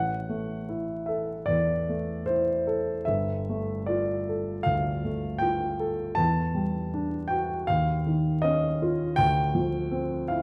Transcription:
Already playing: A1 F#5
0.29 A3
0.69 E4
1.06 A4 E5
1.46 E2 D5
1.89 A3
2.26 E4 C5
2.67 A4
3.05 G1 E5
3.49 A3
3.86 F4 D5
4.29 A4
4.63 D2 F5
5.05 A3
5.38 F4 G5
5.80 A4
6.15 E2 A5
6.55 G3
6.94 D4
7.28 F#4 G5
7.67 D#2 F5
8.06 D#3
8.42 C#4 D#5
8.82 F4
9.16 D2 G5
9.55 F3
9.91 C4
10.28 E4 F5

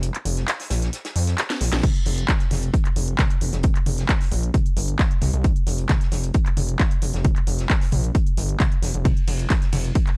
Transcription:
Already playing: F1
0.03 closed hi-hat
0.15 clap, closed hi-hat
0.25 F1, closed hi-hat, open hi-hat
0.37 snare, closed hi-hat
0.48 snare, clap, closed hi-hat
0.60 snare, open hi-hat
0.70 A#1, snare, closed hi-hat, open hi-hat
0.82 snare, closed hi-hat
0.93 snare, closed hi-hat
1.05 snare, closed hi-hat
1.15 F2, snare, open hi-hat
1.27 snare, closed hi-hat
1.38 snare, clap, closed hi-hat
1.50 snare, closed hi-hat
1.61 A#1, snare, closed hi-hat, open hi-hat
1.72 A#1, snare, closed hi-hat
1.83 kick, closed hi-hat, mid tom, crash
1.95 closed hi-hat
2.05 F1, closed hi-hat, open hi-hat
2.17 closed hi-hat
2.28 kick, snare, clap, closed hi-hat
2.40 snare, closed hi-hat
2.50 F1, snare, closed hi-hat, open hi-hat, mid tom
2.62 closed hi-hat
2.74 kick, closed hi-hat
2.85 clap, closed hi-hat
2.96 F1, closed hi-hat, open hi-hat
3.08 closed hi-hat
3.19 kick, snare, clap, closed hi-hat, mid tom
3.30 closed hi-hat
3.41 F1, closed hi-hat, open hi-hat
3.52 F1, snare, closed hi-hat
3.63 kick, closed hi-hat
3.75 clap, closed hi-hat
3.86 F1, closed hi-hat, open hi-hat, mid tom
3.98 snare, closed hi-hat
4.09 kick, snare, clap, closed hi-hat
4.21 snare, open hi-hat
4.31 A#1, closed hi-hat, open hi-hat
4.43 closed hi-hat
4.54 kick, closed hi-hat, mid tom
4.66 closed hi-hat
4.77 G1, closed hi-hat, open hi-hat
4.88 closed hi-hat
4.99 kick, snare, clap, closed hi-hat
5.11 closed hi-hat
5.21 C2, snare, closed hi-hat, open hi-hat, mid tom
5.33 C2, closed hi-hat
5.44 kick, closed hi-hat
5.56 closed hi-hat
5.67 F1, closed hi-hat, open hi-hat
5.78 closed hi-hat
5.89 kick, snare, clap, closed hi-hat, mid tom
6.01 snare, closed hi-hat
6.11 F1, snare, closed hi-hat, open hi-hat
6.24 closed hi-hat
6.34 kick, closed hi-hat
6.46 clap, closed hi-hat
6.57 F1, closed hi-hat, open hi-hat, mid tom
6.69 closed hi-hat
6.79 kick, snare, clap, closed hi-hat
6.91 closed hi-hat
7.02 F1, closed hi-hat, open hi-hat
7.14 F1, snare, closed hi-hat
7.25 kick, closed hi-hat, mid tom
7.36 clap, closed hi-hat
7.47 F1, closed hi-hat, open hi-hat
7.59 snare, closed hi-hat
7.70 kick, snare, clap, closed hi-hat
7.81 snare, open hi-hat
7.92 A#1, closed hi-hat, open hi-hat, mid tom
8.04 closed hi-hat
8.15 kick, closed hi-hat
8.27 closed hi-hat
8.37 G1, closed hi-hat, open hi-hat
8.49 closed hi-hat
8.59 kick, snare, clap, closed hi-hat, mid tom
8.72 closed hi-hat
8.82 F1, snare, closed hi-hat, open hi-hat
8.94 F1, closed hi-hat
9.05 kick, closed hi-hat, mid tom, ride
9.17 closed hi-hat
9.27 F1, closed hi-hat, open hi-hat, ride
9.39 closed hi-hat
9.50 kick, snare, clap, closed hi-hat, ride
9.62 snare, closed hi-hat
9.72 F1, snare, closed hi-hat, open hi-hat, mid tom, ride
9.85 closed hi-hat
9.95 kick, closed hi-hat, ride
10.07 clap, closed hi-hat

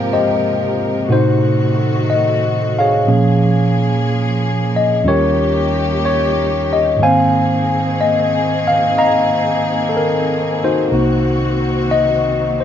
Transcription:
Already playing: G#2 C3 F3 G#3 A#3 C4 F4 G4 A#4 C5 F5
0.13 G4 C5 D#5
1.09 A2 C3 D#3 A3 D#4 F#4 C5
1.14 D#4
2.10 D#5
2.79 G#4 C#5 F5
3.07 A#2 F3 A#3 C#4 G#4
4.76 D#5
5.04 D#2 D#3 G3 A#3 C#4 F4 G4
5.08 G4 A#4 C#5
6.05 C#5
6.73 D#5
6.97 G#2 D#3
7.02 D#3 A#3 C4 G#4 C5 F5 G#5
7.08 F5
8.01 D#5
8.68 F5
8.98 D#5 F5 A#5
9.89 A4
9.97 A#4
10.64 D#4 F#4 C5
10.90 C2 C3 D#3 A#3 D#4 F#4
11.91 D#5
12.60 C5

